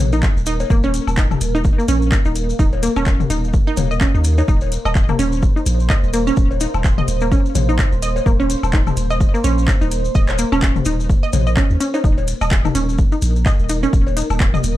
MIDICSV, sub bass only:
0, 0, Header, 1, 2, 480
1, 0, Start_track
1, 0, Tempo, 472441
1, 713, Time_signature, 4, 2, 24, 8
1, 15006, End_track
2, 0, Start_track
2, 0, Title_t, "Sub bass"
2, 0, Program_c, 0, 38
2, 0, Note_on_c, 0, 34, 96
2, 292, Note_off_c, 0, 34, 0
2, 372, Note_on_c, 0, 27, 85
2, 654, Note_off_c, 0, 27, 0
2, 713, Note_on_c, 0, 27, 100
2, 1011, Note_off_c, 0, 27, 0
2, 1091, Note_on_c, 0, 27, 90
2, 1374, Note_off_c, 0, 27, 0
2, 1433, Note_on_c, 0, 27, 100
2, 1731, Note_off_c, 0, 27, 0
2, 1914, Note_on_c, 0, 34, 97
2, 2212, Note_off_c, 0, 34, 0
2, 2291, Note_on_c, 0, 27, 83
2, 2574, Note_off_c, 0, 27, 0
2, 2633, Note_on_c, 0, 27, 98
2, 2931, Note_off_c, 0, 27, 0
2, 3012, Note_on_c, 0, 27, 89
2, 3294, Note_off_c, 0, 27, 0
2, 3354, Note_on_c, 0, 27, 97
2, 3651, Note_off_c, 0, 27, 0
2, 3833, Note_on_c, 0, 27, 89
2, 4131, Note_off_c, 0, 27, 0
2, 4211, Note_on_c, 0, 39, 93
2, 4494, Note_off_c, 0, 39, 0
2, 4553, Note_on_c, 0, 27, 95
2, 4851, Note_off_c, 0, 27, 0
2, 4931, Note_on_c, 0, 27, 90
2, 5214, Note_off_c, 0, 27, 0
2, 5273, Note_on_c, 0, 27, 98
2, 5571, Note_off_c, 0, 27, 0
2, 5753, Note_on_c, 0, 34, 101
2, 6051, Note_off_c, 0, 34, 0
2, 6131, Note_on_c, 0, 27, 87
2, 6414, Note_off_c, 0, 27, 0
2, 6473, Note_on_c, 0, 27, 96
2, 6771, Note_off_c, 0, 27, 0
2, 6851, Note_on_c, 0, 27, 90
2, 7134, Note_off_c, 0, 27, 0
2, 7193, Note_on_c, 0, 27, 98
2, 7491, Note_off_c, 0, 27, 0
2, 7673, Note_on_c, 0, 34, 103
2, 7971, Note_off_c, 0, 34, 0
2, 8051, Note_on_c, 0, 27, 85
2, 8334, Note_off_c, 0, 27, 0
2, 8393, Note_on_c, 0, 27, 98
2, 8691, Note_off_c, 0, 27, 0
2, 8771, Note_on_c, 0, 27, 96
2, 9054, Note_off_c, 0, 27, 0
2, 9113, Note_on_c, 0, 27, 100
2, 9411, Note_off_c, 0, 27, 0
2, 9593, Note_on_c, 0, 34, 100
2, 9891, Note_off_c, 0, 34, 0
2, 9971, Note_on_c, 0, 27, 86
2, 10254, Note_off_c, 0, 27, 0
2, 10313, Note_on_c, 0, 27, 100
2, 10611, Note_off_c, 0, 27, 0
2, 10691, Note_on_c, 0, 27, 96
2, 10974, Note_off_c, 0, 27, 0
2, 11033, Note_on_c, 0, 27, 96
2, 11331, Note_off_c, 0, 27, 0
2, 11514, Note_on_c, 0, 34, 98
2, 11811, Note_off_c, 0, 34, 0
2, 11891, Note_on_c, 0, 39, 84
2, 11956, Note_off_c, 0, 39, 0
2, 12233, Note_on_c, 0, 27, 99
2, 12531, Note_off_c, 0, 27, 0
2, 12611, Note_on_c, 0, 27, 90
2, 12894, Note_off_c, 0, 27, 0
2, 12954, Note_on_c, 0, 27, 101
2, 13251, Note_off_c, 0, 27, 0
2, 13433, Note_on_c, 0, 34, 101
2, 13731, Note_off_c, 0, 34, 0
2, 13812, Note_on_c, 0, 27, 86
2, 14094, Note_off_c, 0, 27, 0
2, 14154, Note_on_c, 0, 27, 96
2, 14451, Note_off_c, 0, 27, 0
2, 14531, Note_on_c, 0, 27, 92
2, 14814, Note_off_c, 0, 27, 0
2, 14873, Note_on_c, 0, 27, 97
2, 15006, Note_off_c, 0, 27, 0
2, 15006, End_track
0, 0, End_of_file